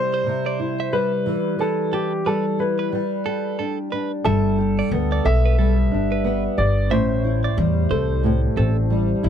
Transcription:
0.00 0.25 C3 medium
0.00 0.92 G3 medium
0.00 1.34 C4 medium
0.00 0.59 E4 medium
0.00 0.96 C5 loud
0.00 1.34 C5 medium
0.14 0.26 C5 medium
0.26 1.34 C3 medium
0.46 0.59 D5 medium
0.59 1.34 E4 medium
0.80 1.11 E5 medium
0.93 2.25 G3 medium
0.93 1.61 B4 medium
1.26 1.58 E3 medium
1.59 3.00 E3 medium
1.59 1.91 A4 medium
1.59 5.09 B4 medium
1.92 3.25 G4 medium
1.92 2.27 G4 medium
1.92 2.12 A4 medium
2.26 2.92 G3 medium
2.26 2.61 A4 medium
2.26 2.45 B4 medium
2.59 3.00 E4 medium
2.59 3.55 B4 medium
2.79 2.92 B4 medium
2.92 4.24 G3 medium
3.25 4.58 G4 medium
3.25 3.57 A4 medium
3.59 3.92 D4 medium
3.59 3.78 A4 medium
3.92 5.91 D4 soft
3.92 4.11 B4 medium
4.24 4.80 G1 medium
4.24 5.58 G3 medium
4.24 5.21 A4 medium
4.24 4.57 E5 medium
4.58 6.57 G4 medium
4.79 4.91 D5 medium
4.91 5.19 D2 medium
4.91 6.23 B3 medium
5.12 5.24 D5 medium
5.24 5.92 B1 medium
5.24 7.60 A4 medium
5.24 6.62 E5 medium
5.46 5.58 B4 medium
5.58 7.57 G3 medium
5.58 5.77 A4 medium
5.92 6.46 G1 medium
5.92 6.99 D4 medium
6.12 6.43 B4 medium
6.24 6.99 B3 medium
6.57 6.91 G1 medium
6.57 7.24 G4 medium
6.57 6.92 D5 medium
6.90 7.46 A1 medium
6.90 8.22 A2 medium
6.90 9.20 C5 medium
6.90 7.23 E5 medium
7.24 9.22 E4 medium
7.44 7.57 D5 medium
7.57 7.85 E2 medium
7.57 8.89 G3 medium
7.90 8.45 C2 medium
7.90 9.29 A4 medium
7.90 8.41 C5 medium
8.23 9.29 A2 medium
8.56 9.12 A1 medium
8.56 9.29 C4 medium
8.56 8.76 A4 medium
8.90 9.29 G3 medium
9.23 9.29 G1 medium
9.23 9.29 E4 medium

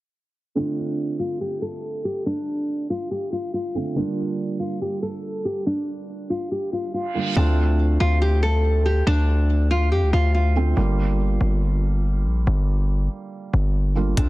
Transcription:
0.55 3.71 D3 medium
0.55 3.71 A3 medium
0.55 3.71 C4 medium
0.55 1.16 D4 loud
0.55 3.72 F4 medium
1.19 1.37 F4 medium
1.41 1.59 G4 medium
1.62 2.02 A4 medium
2.05 2.23 G4 medium
2.26 2.86 D4 loud
2.90 3.08 F4 medium
3.11 3.29 G4 medium
3.32 3.50 F4 medium
3.54 3.94 F4 medium
3.75 3.93 D3 soft
3.75 3.96 A3 soft
3.75 3.96 C4 soft
3.75 3.96 F4 medium
3.95 7.11 D3 medium
3.95 7.11 G3 medium
3.95 7.11 A#3 medium
3.95 4.56 D4 loud
3.95 7.12 F4 medium
4.59 4.78 F4 medium
4.82 5.00 G4 medium
5.02 5.42 A4 medium
5.45 5.63 G4 medium
5.66 6.26 D4 loud
6.30 6.48 F4 medium
6.51 6.69 G4 medium
6.51 reverse cymbal medium
6.73 6.91 F4 medium
6.94 7.34 F4 medium
7.14 7.34 D3 soft
7.14 7.36 G3 soft
7.14 7.36 A#3 soft
7.14 7.37 F4 medium
7.36 7.98 D2 loud
7.36 10.51 D3 medium
7.36 10.52 A3 medium
7.36 10.52 C4 medium
7.36 7.97 D4 loud
7.36 10.53 F4 medium
8.00 9.03 D2 loud
8.00 8.18 F4 medium
8.22 8.40 G4 medium
8.43 8.83 A4 medium
8.86 9.04 G4 medium
9.07 9.93 D2 loud
9.07 9.67 D4 loud
9.71 9.89 F4 medium
9.92 10.04 F2 loud
9.92 10.10 G4 medium
10.02 10.13 D2 loud
10.13 10.74 D2 loud
10.13 10.31 F4 medium
10.34 10.74 F4 medium
10.56 10.74 D3 soft
10.56 10.77 A3 soft
10.56 10.77 C4 soft
10.56 10.77 F4 medium
10.76 11.38 G1 loud
10.76 13.91 D3 medium
10.76 13.92 G3 medium
10.76 13.92 A#3 medium
10.76 13.93 F4 medium
11.41 12.27 G1 loud
12.26 12.46 A#1 loud
12.47 13.08 G1 loud
13.54 14.15 G1 loud
13.95 14.15 D3 soft
13.95 14.17 G3 soft
13.95 14.17 A#3 soft
13.95 14.18 F4 medium
14.17 14.29 D2 loud
14.17 14.29 D3 medium
14.17 14.29 A3 medium
14.17 14.29 C4 medium
14.17 14.29 D4 loud
14.17 14.29 F4 medium
14.17 kick loud
14.17 closed hi-hat medium

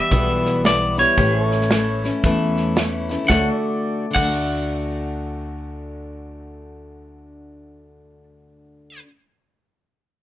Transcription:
0.00 0.11 E3 soft
0.00 0.12 G3 soft
0.00 0.11 B3 soft
0.00 0.11 E4 soft
0.00 1.15 G4 medium
0.00 1.16 B4 medium
0.00 0.61 E5 medium
0.11 1.03 B1 medium
0.11 0.64 E2 medium
0.11 0.65 B2 medium
0.11 0.63 E3 medium
0.11 0.64 G3 medium
0.11 0.65 B3 medium
0.11 0.65 E4 medium
0.11 kick loud
0.11 snare soft
0.45 snare soft
0.64 0.97 E3 medium
0.64 0.98 G3 medium
0.64 0.98 B3 medium
0.64 0.97 E4 medium
0.64 0.96 D5 medium
0.64 snare loud
0.64 hi-hat pedal medium
0.98 1.17 E3 soft
0.98 1.18 G3 soft
0.98 1.18 B3 medium
0.98 1.17 E4 medium
0.98 3.07 C#5 medium
0.98 snare soft
1.18 2.09 A1 medium
1.18 1.71 A2 medium
1.18 1.69 E3 medium
1.18 1.70 A3 medium
1.18 1.71 C#4 medium
1.18 1.72 E4 medium
1.18 1.44 G4 medium
1.18 1.44 B4 medium
1.18 kick loud
1.18 snare soft
1.44 3.28 A4 medium
1.44 3.28 C#5 medium
1.51 snare soft
1.61 snare soft
1.70 2.04 E3 medium
1.70 2.04 A3 medium
1.70 2.04 C#4 medium
1.70 2.02 E4 medium
1.70 snare loud
1.70 hi-hat pedal medium
2.04 2.23 A3 soft
2.04 2.24 C#4 medium
2.04 2.23 E4 soft
2.04 snare soft
2.24 3.15 E2 medium
2.24 2.77 A2 medium
2.24 2.75 E3 medium
2.24 2.76 A3 medium
2.24 2.77 C#4 medium
2.24 2.78 E4 medium
2.24 kick loud
2.24 snare soft
2.57 snare soft
2.76 3.10 E3 medium
2.76 3.10 A3 medium
2.76 3.10 C#4 medium
2.76 3.08 E4 medium
2.76 snare loud
2.76 hi-hat pedal medium
3.09 3.29 A3 medium
3.09 3.30 C#4 medium
3.09 3.29 E4 medium
3.09 snare soft
3.24 4.05 D3 medium
3.28 3.48 D2 medium
3.28 4.05 A3 medium
3.28 8.23 A4 medium
3.28 3.54 C#5 medium
3.28 3.48 F#5 medium
3.28 kick loud
3.28 snare medium
3.36 4.05 D4 medium
3.40 4.05 F#4 medium
3.54 8.24 D5 medium
4.11 9.02 D3 medium
4.11 8.99 F#5 medium
4.16 9.00 D2 medium
4.16 9.05 A3 medium
4.16 kick medium
4.16 crash medium
4.22 9.07 D4 medium
4.27 9.10 F#4 medium

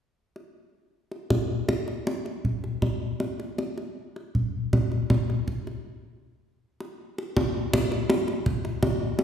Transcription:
0.36 kendang slap soft
1.11 kendang slap soft
1.30 kendang high soft
1.30 kendang low soft
1.69 kendang high soft
1.69 kendang low soft
1.88 kendang slap soft
2.07 kendang high soft
2.26 kendang slap soft
2.45 kendang low soft
2.64 kendang slap soft
2.82 kendang high soft
2.82 kendang low soft
3.20 kendang high soft
3.40 kendang slap soft
3.58 kendang high soft
3.78 kendang slap soft
4.16 kendang slap soft
4.35 kendang low soft
4.73 kendang high soft
4.73 kendang low soft
4.92 kendang slap soft
5.10 kendang high soft
5.10 kendang low soft
5.30 kendang slap soft
5.48 kendang low soft
5.67 kendang slap soft
6.80 kendang slap soft
7.18 kendang slap soft
7.37 kendang high soft
7.37 kendang low soft
7.73 kendang high medium
7.73 kendang low medium
7.92 kendang slap soft
8.10 kendang high medium
8.28 kendang slap soft
8.46 kendang low soft
8.65 kendang slap soft
8.83 kendang high soft
8.83 kendang low soft
9.19 kendang high soft

